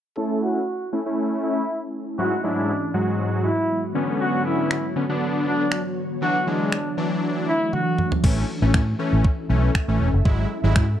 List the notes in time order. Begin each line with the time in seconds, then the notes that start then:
0.17 A3 C#4 E4 A4
0.42 F#4
0.93 A3 C#4 E4
1.06 A3 C#4 E4
1.43 E4
2.18 G#2 E3 F#3 G#3 B3 E4 F#4
2.44 G#2 F#3 G#3 D4 E4
2.94 G#2 F#3 G#3 F#4
3.45 E4
3.95 D3 B3 C#4 C#5
4.21 F#4
4.46 E4
4.71 finger snap
4.96 D3 B3 C#4
5.09 D3 B3 D4
5.46 D4
5.72 finger snap
6.22 E3 F#3 A3 D4 F#4
6.47 E3 F#3 G#3 D4
6.72 finger snap
6.97 E3 F#3 D4
7.48 E4
7.73 F#4, high tom
7.98 mid tom
8.12 floor tom
8.23 A1 E3 A3 C#4 E4 A4 E5, kick, crash
8.62 A1 E3 A3 C#4
8.74 A2, finger snap, kick
8.99 E3 A3 C#4
9.13 A1
9.24 kick
9.49 B1 E3 A3 C#4
9.75 finger snap, kick
9.88 A1 E3 A3 C#4
10.00 E1
10.13 F#1
10.25 G#1 F#3 G#3 B3 E4 F#4 G#4, kick
10.64 G#1 F#3 G#3 E4
10.76 G#2, finger snap, kick